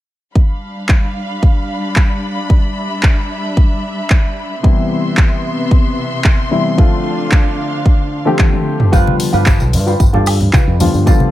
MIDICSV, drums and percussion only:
0, 0, Header, 1, 2, 480
1, 0, Start_track
1, 0, Tempo, 535714
1, 319, Time_signature, 4, 2, 24, 8
1, 10135, End_track
2, 0, Start_track
2, 0, Title_t, "Drums"
2, 318, Note_on_c, 9, 36, 105
2, 408, Note_off_c, 9, 36, 0
2, 796, Note_on_c, 9, 39, 116
2, 798, Note_on_c, 9, 36, 109
2, 886, Note_off_c, 9, 39, 0
2, 888, Note_off_c, 9, 36, 0
2, 1279, Note_on_c, 9, 36, 105
2, 1368, Note_off_c, 9, 36, 0
2, 1756, Note_on_c, 9, 39, 111
2, 1759, Note_on_c, 9, 36, 105
2, 1845, Note_off_c, 9, 39, 0
2, 1849, Note_off_c, 9, 36, 0
2, 2239, Note_on_c, 9, 36, 112
2, 2329, Note_off_c, 9, 36, 0
2, 2715, Note_on_c, 9, 39, 118
2, 2719, Note_on_c, 9, 36, 110
2, 2804, Note_off_c, 9, 39, 0
2, 2809, Note_off_c, 9, 36, 0
2, 3199, Note_on_c, 9, 36, 111
2, 3289, Note_off_c, 9, 36, 0
2, 3675, Note_on_c, 9, 39, 117
2, 3679, Note_on_c, 9, 36, 113
2, 3764, Note_off_c, 9, 39, 0
2, 3769, Note_off_c, 9, 36, 0
2, 4159, Note_on_c, 9, 36, 122
2, 4249, Note_off_c, 9, 36, 0
2, 4634, Note_on_c, 9, 39, 117
2, 4639, Note_on_c, 9, 36, 118
2, 4724, Note_off_c, 9, 39, 0
2, 4728, Note_off_c, 9, 36, 0
2, 5119, Note_on_c, 9, 36, 112
2, 5208, Note_off_c, 9, 36, 0
2, 5594, Note_on_c, 9, 39, 119
2, 5598, Note_on_c, 9, 36, 110
2, 5684, Note_off_c, 9, 39, 0
2, 5688, Note_off_c, 9, 36, 0
2, 6078, Note_on_c, 9, 36, 116
2, 6168, Note_off_c, 9, 36, 0
2, 6555, Note_on_c, 9, 39, 112
2, 6559, Note_on_c, 9, 36, 116
2, 6645, Note_off_c, 9, 39, 0
2, 6649, Note_off_c, 9, 36, 0
2, 7039, Note_on_c, 9, 36, 113
2, 7129, Note_off_c, 9, 36, 0
2, 7516, Note_on_c, 9, 39, 113
2, 7520, Note_on_c, 9, 36, 116
2, 7521, Note_on_c, 9, 48, 61
2, 7606, Note_off_c, 9, 39, 0
2, 7609, Note_off_c, 9, 36, 0
2, 7610, Note_off_c, 9, 48, 0
2, 7643, Note_on_c, 9, 48, 58
2, 7733, Note_off_c, 9, 48, 0
2, 7883, Note_on_c, 9, 45, 81
2, 7973, Note_off_c, 9, 45, 0
2, 8000, Note_on_c, 9, 36, 117
2, 8002, Note_on_c, 9, 54, 52
2, 8090, Note_off_c, 9, 36, 0
2, 8092, Note_off_c, 9, 54, 0
2, 8130, Note_on_c, 9, 63, 85
2, 8219, Note_off_c, 9, 63, 0
2, 8240, Note_on_c, 9, 54, 95
2, 8241, Note_on_c, 9, 46, 99
2, 8330, Note_off_c, 9, 54, 0
2, 8331, Note_off_c, 9, 46, 0
2, 8361, Note_on_c, 9, 54, 42
2, 8450, Note_off_c, 9, 54, 0
2, 8477, Note_on_c, 9, 39, 120
2, 8479, Note_on_c, 9, 54, 51
2, 8480, Note_on_c, 9, 36, 114
2, 8567, Note_off_c, 9, 39, 0
2, 8568, Note_off_c, 9, 54, 0
2, 8570, Note_off_c, 9, 36, 0
2, 8601, Note_on_c, 9, 54, 34
2, 8690, Note_off_c, 9, 54, 0
2, 8721, Note_on_c, 9, 46, 86
2, 8723, Note_on_c, 9, 54, 91
2, 8811, Note_off_c, 9, 46, 0
2, 8813, Note_off_c, 9, 54, 0
2, 8850, Note_on_c, 9, 54, 35
2, 8939, Note_off_c, 9, 54, 0
2, 8960, Note_on_c, 9, 36, 109
2, 8960, Note_on_c, 9, 54, 53
2, 9049, Note_off_c, 9, 54, 0
2, 9050, Note_off_c, 9, 36, 0
2, 9082, Note_on_c, 9, 64, 77
2, 9172, Note_off_c, 9, 64, 0
2, 9194, Note_on_c, 9, 54, 89
2, 9203, Note_on_c, 9, 46, 106
2, 9203, Note_on_c, 9, 76, 82
2, 9284, Note_off_c, 9, 54, 0
2, 9292, Note_off_c, 9, 46, 0
2, 9292, Note_off_c, 9, 76, 0
2, 9321, Note_on_c, 9, 64, 77
2, 9324, Note_on_c, 9, 54, 41
2, 9411, Note_off_c, 9, 64, 0
2, 9414, Note_off_c, 9, 54, 0
2, 9437, Note_on_c, 9, 39, 118
2, 9440, Note_on_c, 9, 36, 116
2, 9440, Note_on_c, 9, 63, 81
2, 9448, Note_on_c, 9, 54, 47
2, 9527, Note_off_c, 9, 39, 0
2, 9529, Note_off_c, 9, 36, 0
2, 9529, Note_off_c, 9, 63, 0
2, 9537, Note_off_c, 9, 54, 0
2, 9679, Note_on_c, 9, 54, 100
2, 9679, Note_on_c, 9, 64, 82
2, 9682, Note_on_c, 9, 46, 88
2, 9768, Note_off_c, 9, 54, 0
2, 9769, Note_off_c, 9, 64, 0
2, 9772, Note_off_c, 9, 46, 0
2, 9803, Note_on_c, 9, 54, 36
2, 9893, Note_off_c, 9, 54, 0
2, 9917, Note_on_c, 9, 54, 51
2, 9919, Note_on_c, 9, 36, 122
2, 10006, Note_off_c, 9, 54, 0
2, 10009, Note_off_c, 9, 36, 0
2, 10035, Note_on_c, 9, 63, 94
2, 10124, Note_off_c, 9, 63, 0
2, 10135, End_track
0, 0, End_of_file